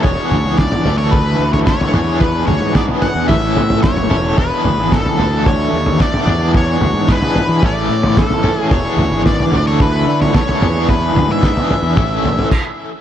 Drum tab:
CC |----------------|----------------|----------------|----------------|
SD |----o-------o---|----o-------o---|----o-------o---|----o-------o---|
T2 |--o-----------o-|--o-----o-----o-|--o-----------o-|--o-----------o-|
FT |o-o--oo-o--o-oo-|o-o--oo-o-oo-oo-|o-o--oo-o--o-oo-|o-o--oo-o--o-oo-|
BD |o---o---o---o---|o---o---o---o---|o---o---o---o---|o---o---o---o---|

CC |----------------|------------x---|
SD |----o-------o---|----o-----------|
T2 |--o-----------o-|--o-----o-------|
FT |o-o--oo-o--o-oo-|o-o--oo-o-oo----|
BD |o---o---o---o---|o---o---o---o---|